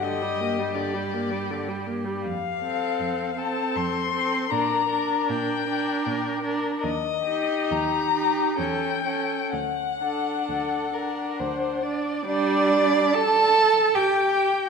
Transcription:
X:1
M:3/4
L:1/16
Q:1/4=76
K:Gm
V:1 name="Violin"
e4 d6 z2 | f6 a2 c'4 | b4 g6 z2 | e4 b4 g4 |
^f8- f2 z2 | d4 a4 g4 |]
V:2 name="Violin"
G12 | z2 A4 A4 A2 | B2 B4 B4 B2 | z2 G4 G2 A2 A2 |
z2 A2 A2 B2 c2 d2 | d4 a4 g4 |]
V:3 name="Viola"
D, G, B, G, D, G, B, G, D, G, B, G, | z2 C4 C4 C2 | D2 D4 D4 D2 | z2 E4 E2 ^C2 C2 |
z2 D4 D4 D2 | G,4 z8 |]
V:4 name="Cello" clef=bass
G,,12 | F,,4 F,,4 F,,4 | B,,4 B,,4 B,,4 | E,,4 E,,4 =E,,4 |
D,,4 D,,4 D,,4 | D4 A4 G4 |]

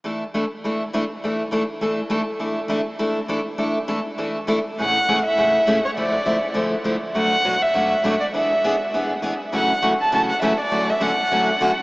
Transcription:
X:1
M:4/4
L:1/8
Q:"Swing" 1/4=202
K:Emix
V:1 name="Violin"
z8 | z8 | z8 | z8 |
f3 e4 c | d4 z4 | f3 e4 d | e4 z4 |
f2 z a a f e d- | d e f4- f z |]
V:2 name="Steel-string acoustic guitar"
[E,A,DEA] z [E,A,DEA] z [E,A,DEA] z [E,A,DEA] z | [E,A,DEA] z [E,A,DEA] z [E,A,DEA] z [E,A,DEA] z | [E,A,DEA] z [E,A,DEA] z [E,A,DEA] z [E,A,DEA] z | [E,A,DEA] z [E,A,DEA] z [E,A,DEA] z [E,A,DEA] z |
[A,,C,E,A,CG] z [A,,C,E,A,CG] z [A,,C,E,A,CG] z [A,,C,E,A,CG] z | [D,=F,A,E] z [D,F,A,E] z [D,F,A,E] z [D,F,A,E] z | [B,,F,A,DF] z [B,,F,A,DF] z [B,,F,A,DF] z [B,,F,A,DF] z | [E,B,DG] z [E,B,DG] z [E,B,DG] z [E,B,DG] z |
[F,,C,E,A,CF] z [F,,C,E,A,CF] z [F,,C,E,A,CF] z [F,,C,E,A,CF] z | [D,F,A,CF] z [D,F,A,CF] z [D,F,A,CF] z [D,F,A,CF] z |]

